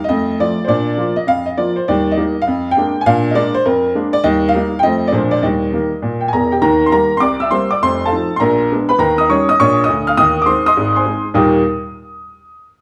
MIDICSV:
0, 0, Header, 1, 2, 480
1, 0, Start_track
1, 0, Key_signature, -3, "major"
1, 0, Tempo, 296736
1, 1116, Time_signature, 4, 2, 24, 8
1, 20728, End_track
2, 0, Start_track
2, 0, Title_t, "Upright piano"
2, 0, Program_c, 0, 0
2, 67, Note_on_c, 0, 75, 86
2, 118, Note_off_c, 0, 75, 0
2, 140, Note_on_c, 0, 41, 93
2, 143, Note_on_c, 0, 75, 99
2, 169, Note_on_c, 0, 57, 59
2, 421, Control_c, 0, 64, 127
2, 429, Note_off_c, 0, 57, 0
2, 555, Note_off_c, 0, 41, 0
2, 629, Note_off_c, 0, 75, 0
2, 643, Note_on_c, 0, 53, 51
2, 651, Note_on_c, 0, 74, 87
2, 653, Control_c, 0, 64, 0
2, 659, Note_on_c, 0, 57, 37
2, 659, Note_on_c, 0, 65, 51
2, 905, Note_off_c, 0, 53, 0
2, 917, Note_off_c, 0, 57, 0
2, 917, Note_off_c, 0, 65, 0
2, 1037, Note_off_c, 0, 74, 0
2, 1043, Note_on_c, 0, 72, 71
2, 1095, Note_on_c, 0, 46, 72
2, 1107, Note_on_c, 0, 74, 86
2, 1123, Note_off_c, 0, 72, 0
2, 1123, Note_on_c, 0, 62, 52
2, 1372, Control_c, 0, 64, 127
2, 1385, Note_off_c, 0, 62, 0
2, 1512, Note_off_c, 0, 46, 0
2, 1569, Note_on_c, 0, 53, 37
2, 1578, Note_on_c, 0, 58, 46
2, 1587, Note_on_c, 0, 65, 44
2, 1618, Control_c, 0, 64, 0
2, 1841, Note_off_c, 0, 53, 0
2, 1847, Note_off_c, 0, 58, 0
2, 1854, Note_off_c, 0, 65, 0
2, 1881, Note_on_c, 0, 75, 84
2, 1898, Note_off_c, 0, 74, 0
2, 2057, Note_on_c, 0, 41, 68
2, 2066, Note_off_c, 0, 75, 0
2, 2070, Note_on_c, 0, 77, 100
2, 2361, Note_on_c, 0, 75, 70
2, 2379, Note_off_c, 0, 77, 0
2, 2473, Note_off_c, 0, 41, 0
2, 2545, Note_off_c, 0, 75, 0
2, 2548, Note_on_c, 0, 74, 76
2, 2552, Note_on_c, 0, 53, 44
2, 2553, Note_on_c, 0, 58, 38
2, 2565, Note_on_c, 0, 65, 39
2, 2817, Note_off_c, 0, 53, 0
2, 2818, Note_off_c, 0, 58, 0
2, 2827, Note_off_c, 0, 65, 0
2, 2846, Note_on_c, 0, 72, 74
2, 2858, Note_off_c, 0, 74, 0
2, 3028, Note_off_c, 0, 72, 0
2, 3044, Note_on_c, 0, 74, 82
2, 3048, Note_on_c, 0, 39, 78
2, 3075, Note_on_c, 0, 55, 53
2, 3295, Control_c, 0, 64, 127
2, 3328, Note_off_c, 0, 55, 0
2, 3423, Note_on_c, 0, 75, 81
2, 3433, Note_off_c, 0, 74, 0
2, 3451, Note_off_c, 0, 39, 0
2, 3514, Note_on_c, 0, 55, 42
2, 3519, Note_on_c, 0, 58, 45
2, 3532, Note_on_c, 0, 63, 46
2, 3535, Control_c, 0, 64, 0
2, 3778, Note_off_c, 0, 55, 0
2, 3782, Note_off_c, 0, 58, 0
2, 3791, Note_off_c, 0, 63, 0
2, 3906, Note_off_c, 0, 75, 0
2, 3908, Note_on_c, 0, 77, 85
2, 4002, Note_on_c, 0, 41, 86
2, 4250, Control_c, 0, 64, 127
2, 4388, Note_off_c, 0, 77, 0
2, 4390, Note_on_c, 0, 79, 97
2, 4407, Note_off_c, 0, 41, 0
2, 4480, Note_on_c, 0, 58, 45
2, 4481, Note_on_c, 0, 56, 44
2, 4494, Note_on_c, 0, 62, 47
2, 4497, Control_c, 0, 64, 0
2, 4742, Note_off_c, 0, 58, 0
2, 4743, Note_off_c, 0, 56, 0
2, 4752, Note_off_c, 0, 62, 0
2, 4868, Note_off_c, 0, 79, 0
2, 4870, Note_on_c, 0, 80, 78
2, 4952, Note_on_c, 0, 46, 89
2, 4955, Note_on_c, 0, 77, 107
2, 4956, Note_off_c, 0, 80, 0
2, 4989, Note_on_c, 0, 62, 56
2, 5216, Control_c, 0, 64, 127
2, 5243, Note_off_c, 0, 62, 0
2, 5347, Note_off_c, 0, 77, 0
2, 5348, Note_on_c, 0, 75, 78
2, 5360, Note_off_c, 0, 46, 0
2, 5412, Note_on_c, 0, 56, 51
2, 5422, Note_on_c, 0, 58, 55
2, 5423, Note_on_c, 0, 62, 52
2, 5424, Note_on_c, 0, 74, 101
2, 5434, Note_off_c, 0, 75, 0
2, 5451, Control_c, 0, 64, 0
2, 5682, Note_off_c, 0, 56, 0
2, 5689, Note_off_c, 0, 58, 0
2, 5690, Note_off_c, 0, 62, 0
2, 5733, Note_on_c, 0, 72, 106
2, 5735, Note_off_c, 0, 74, 0
2, 5910, Note_off_c, 0, 72, 0
2, 5913, Note_on_c, 0, 70, 89
2, 5915, Note_on_c, 0, 41, 88
2, 6322, Note_off_c, 0, 41, 0
2, 6391, Note_on_c, 0, 56, 54
2, 6392, Note_off_c, 0, 70, 0
2, 6393, Note_on_c, 0, 58, 44
2, 6399, Note_on_c, 0, 62, 56
2, 6655, Note_off_c, 0, 56, 0
2, 6656, Note_off_c, 0, 58, 0
2, 6661, Note_off_c, 0, 62, 0
2, 6682, Note_on_c, 0, 74, 100
2, 6853, Note_on_c, 0, 75, 112
2, 6855, Note_on_c, 0, 39, 95
2, 6863, Note_off_c, 0, 74, 0
2, 6884, Note_on_c, 0, 55, 59
2, 7133, Control_c, 0, 64, 127
2, 7144, Note_off_c, 0, 55, 0
2, 7255, Note_off_c, 0, 75, 0
2, 7256, Note_on_c, 0, 77, 92
2, 7269, Note_off_c, 0, 39, 0
2, 7355, Note_on_c, 0, 55, 54
2, 7360, Note_on_c, 0, 58, 57
2, 7367, Control_c, 0, 64, 0
2, 7368, Note_on_c, 0, 63, 54
2, 7617, Note_off_c, 0, 55, 0
2, 7621, Note_off_c, 0, 58, 0
2, 7626, Note_off_c, 0, 63, 0
2, 7739, Note_off_c, 0, 77, 0
2, 7751, Note_on_c, 0, 79, 94
2, 7814, Note_on_c, 0, 75, 109
2, 7818, Note_on_c, 0, 41, 89
2, 7818, Note_on_c, 0, 53, 42
2, 7833, Note_off_c, 0, 79, 0
2, 7839, Note_on_c, 0, 57, 59
2, 7852, Note_on_c, 0, 60, 51
2, 8084, Note_off_c, 0, 53, 0
2, 8100, Control_c, 0, 64, 127
2, 8110, Note_off_c, 0, 60, 0
2, 8119, Note_off_c, 0, 57, 0
2, 8210, Note_on_c, 0, 74, 81
2, 8214, Note_off_c, 0, 75, 0
2, 8230, Note_off_c, 0, 41, 0
2, 8275, Note_on_c, 0, 53, 42
2, 8284, Note_on_c, 0, 72, 70
2, 8285, Note_on_c, 0, 46, 71
2, 8288, Note_on_c, 0, 56, 46
2, 8299, Note_on_c, 0, 58, 43
2, 8302, Note_off_c, 0, 74, 0
2, 8316, Note_on_c, 0, 62, 51
2, 8322, Control_c, 0, 64, 0
2, 8548, Note_off_c, 0, 53, 0
2, 8557, Note_off_c, 0, 56, 0
2, 8566, Note_off_c, 0, 58, 0
2, 8575, Control_c, 0, 64, 127
2, 8577, Note_off_c, 0, 62, 0
2, 8592, Note_on_c, 0, 74, 87
2, 8602, Note_off_c, 0, 72, 0
2, 8703, Note_off_c, 0, 46, 0
2, 8774, Note_on_c, 0, 39, 69
2, 8777, Note_off_c, 0, 74, 0
2, 8777, Note_on_c, 0, 75, 74
2, 8803, Control_c, 0, 64, 0
2, 8815, Note_on_c, 0, 55, 49
2, 9041, Control_c, 0, 64, 127
2, 9071, Note_off_c, 0, 55, 0
2, 9187, Note_off_c, 0, 39, 0
2, 9259, Note_on_c, 0, 51, 38
2, 9262, Note_on_c, 0, 55, 40
2, 9277, Note_on_c, 0, 58, 44
2, 9291, Control_c, 0, 64, 0
2, 9525, Note_off_c, 0, 51, 0
2, 9527, Note_off_c, 0, 55, 0
2, 9538, Note_off_c, 0, 58, 0
2, 9744, Note_on_c, 0, 46, 64
2, 10040, Note_on_c, 0, 79, 55
2, 10133, Note_off_c, 0, 79, 0
2, 10153, Note_off_c, 0, 46, 0
2, 10161, Note_on_c, 0, 80, 70
2, 10231, Note_on_c, 0, 40, 55
2, 10235, Note_on_c, 0, 28, 52
2, 10237, Note_off_c, 0, 80, 0
2, 10239, Note_on_c, 0, 82, 71
2, 10251, Note_on_c, 0, 70, 55
2, 10524, Note_off_c, 0, 70, 0
2, 10527, Note_off_c, 0, 75, 0
2, 10539, Note_off_c, 0, 82, 0
2, 10544, Note_on_c, 0, 79, 67
2, 10554, Note_on_c, 0, 67, 57
2, 10613, Note_off_c, 0, 40, 0
2, 10615, Note_off_c, 0, 28, 0
2, 10702, Note_on_c, 0, 51, 69
2, 10705, Note_on_c, 0, 82, 84
2, 10706, Note_off_c, 0, 67, 0
2, 10706, Note_on_c, 0, 39, 76
2, 10712, Note_off_c, 0, 79, 0
2, 10724, Note_on_c, 0, 70, 67
2, 10972, Control_c, 0, 64, 127
2, 11081, Note_off_c, 0, 70, 0
2, 11099, Note_off_c, 0, 82, 0
2, 11101, Note_on_c, 0, 84, 67
2, 11111, Note_off_c, 0, 51, 0
2, 11114, Note_off_c, 0, 39, 0
2, 11187, Note_off_c, 0, 84, 0
2, 11188, Note_on_c, 0, 51, 38
2, 11197, Note_on_c, 0, 55, 40
2, 11198, Note_on_c, 0, 82, 84
2, 11199, Note_on_c, 0, 58, 40
2, 11202, Control_c, 0, 64, 0
2, 11215, Note_on_c, 0, 70, 60
2, 11452, Note_off_c, 0, 51, 0
2, 11458, Note_off_c, 0, 55, 0
2, 11460, Note_off_c, 0, 58, 0
2, 11567, Note_off_c, 0, 70, 0
2, 11585, Note_off_c, 0, 82, 0
2, 11601, Note_on_c, 0, 84, 74
2, 11653, Note_on_c, 0, 86, 94
2, 11662, Note_on_c, 0, 36, 66
2, 11662, Note_on_c, 0, 48, 71
2, 11677, Note_off_c, 0, 84, 0
2, 11686, Note_on_c, 0, 74, 66
2, 11939, Control_c, 0, 64, 127
2, 11962, Note_off_c, 0, 74, 0
2, 11966, Note_off_c, 0, 86, 0
2, 11972, Note_on_c, 0, 88, 75
2, 11996, Note_on_c, 0, 76, 62
2, 12072, Note_off_c, 0, 36, 0
2, 12072, Note_off_c, 0, 48, 0
2, 12144, Note_on_c, 0, 84, 81
2, 12146, Note_off_c, 0, 88, 0
2, 12147, Note_off_c, 0, 76, 0
2, 12151, Note_on_c, 0, 55, 42
2, 12157, Note_on_c, 0, 58, 38
2, 12158, Control_c, 0, 64, 0
2, 12162, Note_on_c, 0, 60, 42
2, 12164, Note_on_c, 0, 72, 58
2, 12414, Note_off_c, 0, 55, 0
2, 12418, Note_off_c, 0, 58, 0
2, 12422, Note_off_c, 0, 60, 0
2, 12441, Note_off_c, 0, 72, 0
2, 12452, Note_off_c, 0, 84, 0
2, 12465, Note_on_c, 0, 86, 82
2, 12489, Note_on_c, 0, 74, 57
2, 12633, Note_off_c, 0, 86, 0
2, 12634, Note_off_c, 0, 74, 0
2, 12651, Note_on_c, 0, 29, 61
2, 12663, Note_on_c, 0, 84, 99
2, 12664, Note_on_c, 0, 41, 75
2, 12677, Note_on_c, 0, 72, 62
2, 12879, Control_c, 0, 64, 127
2, 13019, Note_off_c, 0, 72, 0
2, 13029, Note_on_c, 0, 81, 74
2, 13038, Note_off_c, 0, 84, 0
2, 13041, Note_on_c, 0, 69, 56
2, 13045, Note_on_c, 0, 77, 50
2, 13049, Note_off_c, 0, 29, 0
2, 13056, Note_off_c, 0, 41, 0
2, 13130, Note_on_c, 0, 60, 34
2, 13131, Control_c, 0, 64, 0
2, 13131, Note_on_c, 0, 53, 44
2, 13150, Note_on_c, 0, 63, 42
2, 13388, Note_off_c, 0, 60, 0
2, 13389, Note_off_c, 0, 53, 0
2, 13402, Note_off_c, 0, 63, 0
2, 13478, Note_off_c, 0, 69, 0
2, 13480, Note_off_c, 0, 77, 0
2, 13505, Note_off_c, 0, 81, 0
2, 13529, Note_on_c, 0, 84, 70
2, 13587, Note_on_c, 0, 82, 75
2, 13597, Note_on_c, 0, 34, 70
2, 13597, Note_on_c, 0, 46, 73
2, 13601, Note_off_c, 0, 84, 0
2, 13616, Note_on_c, 0, 70, 70
2, 13848, Control_c, 0, 64, 127
2, 13888, Note_off_c, 0, 70, 0
2, 13894, Note_off_c, 0, 82, 0
2, 14001, Note_off_c, 0, 34, 0
2, 14002, Note_off_c, 0, 46, 0
2, 14087, Control_c, 0, 64, 0
2, 14102, Note_on_c, 0, 59, 39
2, 14108, Note_on_c, 0, 56, 48
2, 14117, Note_on_c, 0, 62, 41
2, 14357, Note_off_c, 0, 59, 0
2, 14361, Note_off_c, 0, 56, 0
2, 14368, Note_off_c, 0, 62, 0
2, 14377, Note_on_c, 0, 83, 91
2, 14396, Note_on_c, 0, 71, 62
2, 14531, Note_on_c, 0, 39, 76
2, 14539, Note_on_c, 0, 51, 80
2, 14546, Note_on_c, 0, 82, 84
2, 14548, Note_off_c, 0, 71, 0
2, 14549, Note_off_c, 0, 83, 0
2, 14556, Note_on_c, 0, 70, 70
2, 14799, Control_c, 0, 64, 127
2, 14838, Note_off_c, 0, 70, 0
2, 14852, Note_on_c, 0, 87, 80
2, 14854, Note_off_c, 0, 82, 0
2, 14884, Note_on_c, 0, 75, 64
2, 14947, Note_off_c, 0, 39, 0
2, 14952, Note_off_c, 0, 51, 0
2, 15028, Note_off_c, 0, 87, 0
2, 15032, Note_off_c, 0, 75, 0
2, 15035, Note_on_c, 0, 55, 48
2, 15039, Note_on_c, 0, 85, 79
2, 15054, Note_on_c, 0, 61, 45
2, 15055, Control_c, 0, 64, 0
2, 15055, Note_on_c, 0, 63, 46
2, 15060, Note_on_c, 0, 73, 68
2, 15298, Note_off_c, 0, 55, 0
2, 15312, Note_off_c, 0, 61, 0
2, 15312, Note_off_c, 0, 63, 0
2, 15331, Note_off_c, 0, 73, 0
2, 15341, Note_off_c, 0, 85, 0
2, 15350, Note_on_c, 0, 87, 96
2, 15368, Note_on_c, 0, 75, 75
2, 15515, Note_off_c, 0, 75, 0
2, 15517, Note_off_c, 0, 87, 0
2, 15526, Note_on_c, 0, 34, 76
2, 15526, Note_on_c, 0, 85, 103
2, 15531, Note_on_c, 0, 46, 74
2, 15547, Note_on_c, 0, 73, 80
2, 15896, Note_off_c, 0, 73, 0
2, 15912, Note_off_c, 0, 85, 0
2, 15917, Note_on_c, 0, 87, 86
2, 15928, Note_off_c, 0, 34, 0
2, 15931, Note_off_c, 0, 46, 0
2, 15933, Note_on_c, 0, 75, 72
2, 15989, Note_on_c, 0, 50, 75
2, 15991, Note_on_c, 0, 38, 75
2, 16286, Note_off_c, 0, 75, 0
2, 16292, Note_on_c, 0, 89, 89
2, 16304, Note_off_c, 0, 87, 0
2, 16313, Note_on_c, 0, 77, 76
2, 16374, Note_off_c, 0, 50, 0
2, 16375, Note_off_c, 0, 38, 0
2, 16458, Note_on_c, 0, 87, 112
2, 16463, Note_on_c, 0, 39, 77
2, 16465, Note_on_c, 0, 51, 76
2, 16468, Note_off_c, 0, 77, 0
2, 16469, Note_off_c, 0, 89, 0
2, 16485, Note_on_c, 0, 75, 73
2, 16724, Control_c, 0, 64, 127
2, 16845, Note_off_c, 0, 75, 0
2, 16852, Note_on_c, 0, 86, 72
2, 16858, Note_off_c, 0, 87, 0
2, 16875, Note_off_c, 0, 39, 0
2, 16877, Note_off_c, 0, 51, 0
2, 16922, Note_on_c, 0, 84, 75
2, 16924, Note_on_c, 0, 56, 48
2, 16925, Note_on_c, 0, 60, 42
2, 16940, Note_on_c, 0, 72, 64
2, 16944, Note_on_c, 0, 63, 47
2, 16945, Note_off_c, 0, 86, 0
2, 16976, Control_c, 0, 64, 0
2, 17196, Note_off_c, 0, 56, 0
2, 17197, Note_off_c, 0, 60, 0
2, 17211, Note_off_c, 0, 63, 0
2, 17231, Note_off_c, 0, 72, 0
2, 17244, Note_off_c, 0, 84, 0
2, 17250, Note_on_c, 0, 87, 95
2, 17271, Note_on_c, 0, 75, 76
2, 17274, Note_on_c, 0, 84, 71
2, 17415, Note_on_c, 0, 32, 75
2, 17420, Note_on_c, 0, 44, 75
2, 17705, Note_off_c, 0, 84, 0
2, 17713, Note_off_c, 0, 75, 0
2, 17730, Note_on_c, 0, 84, 62
2, 17735, Note_off_c, 0, 87, 0
2, 17736, Note_on_c, 0, 80, 50
2, 17743, Note_on_c, 0, 72, 53
2, 17832, Note_off_c, 0, 32, 0
2, 17834, Note_off_c, 0, 44, 0
2, 17885, Note_on_c, 0, 56, 40
2, 17890, Note_on_c, 0, 60, 44
2, 17894, Note_on_c, 0, 63, 42
2, 18157, Note_off_c, 0, 56, 0
2, 18161, Note_off_c, 0, 60, 0
2, 18164, Note_off_c, 0, 63, 0
2, 18185, Note_off_c, 0, 80, 0
2, 18189, Note_off_c, 0, 72, 0
2, 18216, Note_off_c, 0, 84, 0
2, 18343, Note_on_c, 0, 46, 62
2, 18349, Note_on_c, 0, 58, 75
2, 18351, Note_on_c, 0, 55, 63
2, 18352, Note_on_c, 0, 39, 84
2, 18360, Note_on_c, 0, 63, 71
2, 18363, Note_on_c, 0, 87, 57
2, 18368, Note_on_c, 0, 67, 73
2, 18583, Control_c, 0, 64, 127
2, 18685, Note_off_c, 0, 46, 0
2, 18688, Note_off_c, 0, 58, 0
2, 18689, Note_off_c, 0, 39, 0
2, 18689, Note_off_c, 0, 55, 0
2, 18694, Note_off_c, 0, 63, 0
2, 18696, Note_off_c, 0, 87, 0
2, 18698, Note_off_c, 0, 67, 0
2, 18763, Control_c, 0, 64, 0
2, 20728, End_track
0, 0, End_of_file